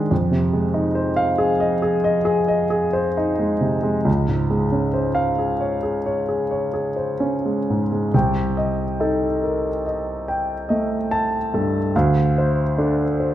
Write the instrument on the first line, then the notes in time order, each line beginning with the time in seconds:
grand piano
Already playing: D#3 G#3 D4 G#4 C5 D5
0.11 F2
0.31 C3
0.53 G#3
0.74 D#4
0.95 C5
1.17 F5
1.38 G#4
1.60 D#5
1.82 G#4
2.04 D#5
2.25 G#4
2.48 D#5
2.70 G#4
2.93 C5
3.17 D#4
3.39 G#3
3.61 C3
3.83 G#3
4.05 C#2
4.28 G#2
4.50 G#3
4.72 C#4
4.94 C5
5.15 F5
5.39 G#4
5.60 C#5
5.83 G#4
6.06 C#5
6.29 G#4
6.51 C#5
6.74 G#4
6.96 C5
7.20 C#4
7.46 G#3
7.70 G#2
7.92 G#3
8.14 C2 G5
8.57 D#5
9.00 D#4 A4
9.43 A#4
9.86 D#5
10.28 G5
10.69 A3 D#5
11.11 A5
11.54 G2 A4
11.96 D2 F5
12.38 C5
12.78 D4 A4
13.20 C5